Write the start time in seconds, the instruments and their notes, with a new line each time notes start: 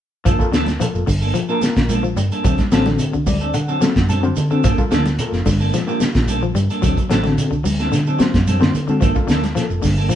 0.25 fingered electric bass G1, clean electric guitar F3 A#3 D4 A4, kick, closed hi-hat, low conga, shekere
0.39 reed electric piano A#3 F4 A4, muted clean electric guitar stroke, kick, shekere
0.52 fingered electric bass D2, clean electric guitar D3 F3 A#3 D4 A4, snare, closed hi-hat, shekere
0.66 muted clean electric guitar stroke, snare, closed hi-hat, high conga, shekere
0.80 clean electric guitar F3, reed electric piano A#3 F4 A4, closed hi-hat, shekere
0.94 fingered electric bass F1, muted clean electric guitar stroke, shekere
1.07 fingered electric bass G1, clean electric guitar D3, muted clean electric guitar stroke, kick, open hi-hat, high conga, low conga, shekere
1.21 clean electric guitar A#3 D4 A4, shekere
1.34 clean electric guitar F3, muted clean electric guitar stroke, closed hi-hat, shekere
1.49 clean electric guitar F3 A#3 D4 A4, reed electric piano A#3 F4 A#4, shekere
1.61 muted fingered electric bass stroke, muted clean electric guitar stroke, snare, closed hi-hat, high conga, shekere
1.76 fingered electric bass A#1, kick, snare, closed hi-hat, shekere
1.89 clean electric guitar F3 A#3 D4 A4, closed hi-hat, high conga, shekere
2.03 clean electric guitar F3, muted clean electric guitar stroke, shekere
2.16 fingered electric bass G2, clean electric guitar G3, muted clean electric guitar stroke, closed hi-hat, low conga, shekere
2.31 clean electric guitar A#3 D4 A4, closed hi-hat, shekere
2.44 fingered electric bass D2, clean electric guitar F#3 C4 D4 A4, kick, closed hi-hat, shekere
2.58 muted fingered electric bass stroke, muted clean electric guitar stroke, kick, snare, closed hi-hat, high conga, shekere
2.72 fingered electric bass A1, clean electric guitar F#3 C4 D4 A4, reed electric piano C4 F#4 A4, snare, closed hi-hat, shekere
2.86 clean electric guitar D3, muted clean electric guitar stroke, snare, high conga, shekere
2.98 closed hi-hat, shekere
3.13 fingered electric bass C2, clean electric guitar D3, muted clean electric guitar stroke, shekere
3.27 fingered electric bass D2, clean electric guitar F#3, reed electric piano D5, muted clean electric guitar stroke, kick, open hi-hat, high conga, low conga, shekere
3.41 clean electric guitar C4 D4 A4, closed hi-hat, shekere
3.54 clean electric guitar D3, reed electric piano F#5, muted clean electric guitar stroke, closed hi-hat, shekere
3.68 clean electric guitar F#3 C4 D4 A4, shekere
3.81 clean electric guitar F#3, reed electric piano C4 F#4 A4, muted clean electric guitar stroke, muted fingered electric bass stroke, snare, closed hi-hat, high conga, shekere
3.96 fingered electric bass F#2, kick, snare, closed hi-hat, shekere
4.08 clean electric guitar F#3 C4 D4 A4, reed electric piano A5, closed hi-hat, high conga, shekere
4.23 clean electric guitar D3, reed electric piano C4 F#4 C5, muted clean electric guitar stroke, shekere
4.36 fingered electric bass D3, muted clean electric guitar stroke, closed hi-hat, low conga, shekere
4.51 clean electric guitar D3 C4 D4 A4, reed electric piano C4 F#4 A4, shekere
4.64 fingered electric bass G1, clean electric guitar F3 A#3 D4 A4, kick, closed hi-hat, shekere
4.78 reed electric piano A#3 F4 A4, muted clean electric guitar stroke, kick, high conga, shekere
4.90 fingered electric bass D2, clean electric guitar D3 F3 A#3 D4 A4, snare, closed hi-hat, shekere
5.05 muted clean electric guitar stroke, snare, closed hi-hat, high conga, shekere
5.19 reed electric piano A#3 F4 A4, closed hi-hat, shekere
5.32 fingered electric bass F1, muted clean electric guitar stroke, snare, shekere
5.46 fingered electric bass G1, clean electric guitar D3, muted clean electric guitar stroke, kick, snare, open hi-hat, high conga, low conga, shekere
5.60 clean electric guitar A#3 D4 A4, shekere
5.73 clean electric guitar F3, muted clean electric guitar stroke, snare, closed hi-hat, shekere
5.87 clean electric guitar F3 A#3 D4 A4, reed electric piano A#3 F4 G4, shekere
6.00 muted clean electric guitar stroke, muted fingered electric bass stroke, snare, closed hi-hat, high conga, shekere
6.15 fingered electric bass A#1, kick, snare, closed hi-hat, shekere
6.28 clean electric guitar F3 A#3 D4 A4, closed hi-hat, high conga, shekere
6.42 clean electric guitar F3, muted clean electric guitar stroke, shekere
6.55 fingered electric bass G2, clean electric guitar G3, muted clean electric guitar stroke, closed hi-hat, low conga, shekere
6.70 clean electric guitar A#3 D4 A4, closed hi-hat, shekere
6.82 fingered electric bass D2, clean electric guitar F#3 C4 D4 A4, kick, closed hi-hat, shekere
6.97 muted fingered electric bass stroke, muted clean electric guitar stroke, kick, closed hi-hat, shekere
7.10 fingered electric bass A1, clean electric guitar F#3 C4 D4 A4, reed electric piano C4 F#4 A4, snare, closed hi-hat, shekere
7.23 clean electric guitar D3, muted clean electric guitar stroke, snare, high conga, shekere
7.38 closed hi-hat, shekere
7.51 fingered electric bass C2, clean electric guitar D3, muted clean electric guitar stroke, shekere
7.64 fingered electric bass D2, clean electric guitar F#3, muted clean electric guitar stroke, open hi-hat, high conga, low conga, shekere
7.79 clean electric guitar C4 D4 A4, snare, closed hi-hat, shekere
7.92 clean electric guitar D3, muted clean electric guitar stroke, snare, closed hi-hat, shekere
8.06 clean electric guitar F#3 C4 D4 A4, shekere
8.19 clean electric guitar F#3, reed electric piano C4 F#4 C5, muted fingered electric bass stroke, muted clean electric guitar stroke, snare, closed hi-hat, high conga, low conga, shekere
8.34 fingered electric bass F#2, kick, snare, closed hi-hat, high conga, shekere
8.47 clean electric guitar F#3 C4 D4 A4, closed hi-hat, high conga, shekere
8.60 clean electric guitar D3, reed electric piano C4 F#4 C5, muted clean electric guitar stroke, snare, shekere
8.74 fingered electric bass D3, muted clean electric guitar stroke, closed hi-hat, low conga, shekere
8.88 clean electric guitar D3 C4 D4, reed electric piano C4 F#4 A4, muted clean electric guitar stroke, high conga, shekere
9.01 fingered electric bass G1, clean electric guitar F3 A#3 D4 A4, kick, closed hi-hat, low conga, shekere
9.15 reed electric piano A#3 F4 A4, muted clean electric guitar stroke, kick, shekere
9.28 fingered electric bass D2, clean electric guitar D3 F3 A#3 D4 A4, snare, closed hi-hat, shekere
9.43 muted clean electric guitar stroke, snare, closed hi-hat, high conga, shekere
9.55 clean electric guitar F3, reed electric piano A#3 F4 A4, snare, closed hi-hat, shekere
9.70 fingered electric bass F1, muted clean electric guitar stroke, shekere
9.82 fingered electric bass G1, clean electric guitar D3, muted clean electric guitar stroke, kick, snare, open hi-hat, high conga, low conga, shekere
9.97 clean electric guitar A#3 D4 A4, shekere
10.09 clean electric guitar F3, muted clean electric guitar stroke, closed hi-hat, shekere